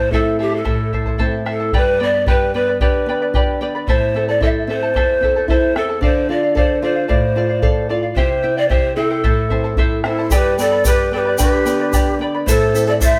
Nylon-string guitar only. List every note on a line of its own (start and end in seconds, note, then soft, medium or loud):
0.00 0.62 A2 medium
0.11 0.63 A3 soft
0.11 0.63 C4 soft
0.11 0.64 E4 soft
0.65 1.69 A2 medium
1.19 1.71 A3 soft
1.19 1.71 C4 soft
1.19 1.72 E4 soft
1.74 2.77 G2 medium
2.00 2.26 B3 medium
2.26 2.52 G4 medium
2.54 2.79 B3 medium
2.81 3.84 D3 medium
3.06 3.32 B3 medium
3.34 3.60 G4 medium
3.61 3.87 B3 medium
3.88 4.91 A2 medium
4.14 4.40 C4 medium
4.41 4.67 E4 medium
4.67 4.93 C4 medium
4.94 5.98 E2 medium
5.21 5.47 C4 medium
5.48 5.74 E4 medium
5.76 6.01 C4 medium
6.01 7.05 D3 medium
6.29 6.54 F4 medium
6.55 6.81 A4 medium
6.82 7.08 F4 medium
7.09 8.13 A2 medium
7.36 7.62 F4 medium
7.62 7.89 A4 medium
7.90 8.16 F4 medium
8.16 9.21 C3 medium
8.44 8.69 E4 medium
8.69 8.96 G4 medium
8.97 9.23 E4 medium
9.24 10.29 A2 medium
9.50 9.77 C4 medium
9.77 10.04 E4 medium
10.04 10.31 C4 medium
10.30 11.35 G2 medium
10.58 10.84 B3 medium
10.84 11.11 G4 medium
11.11 11.38 B3 soft
11.39 12.43 D3 medium
11.65 11.92 B3 medium
11.92 12.19 G4 medium
12.19 12.46 B3 medium
12.46 13.20 A2 medium
12.74 13.00 C4 medium
13.00 13.20 E4 medium